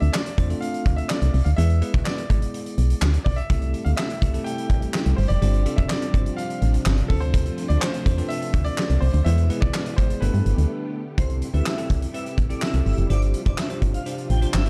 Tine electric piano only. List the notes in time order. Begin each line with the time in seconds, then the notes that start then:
Already playing: A3 C4 D4 F4 A4
0.38 A3 C4 D4 F4 C5
0.50 A3 C4 D4 F4 A4
1.58 G#3 B3 E4 G#4 B4
1.81 G#3 B3 E4 G#4 B4
2.30 G#3 B3 E4 G#4 D5
3.50 A3 C4 E4 G4 A4
4.22 A3 C4 E4 G4 A4
4.34 A3 C4 E4 G4 A4
5.42 C4 D4 F4 G4 C5
5.66 C4 D4 F4 G4 A4
6.14 C4 D4 F4 G4 C5
7.10 C4 D4 F4 A4 C5
8.06 C4 D4 F4 A4 C5
8.18 C4 D4 F4 A4 B4
9.26 G#3 B3 E4 G#4 B4
9.50 G#3 B3 E4 G#4 B4
9.98 G#3 B3 E4 G#4 D5
10.22 A3 B3 D4 G4 A4
11.18 C4 E4 G4 A4
11.54 C4 E4 G4 B4
11.78 C4 E4 G4 A4
12.14 C4 E4 G4 B4
12.50 C4 E4 G4 A4
12.73 C4 E4 G4 A4
13.10 D4 F4 G4 C5
13.46 D4 F4 G4 C5
13.70 D4 F4 G4 C5
14.06 D4 F4 G4 C5
14.42 D4 F4 G4 C5
14.66 D4 F4 G4 B4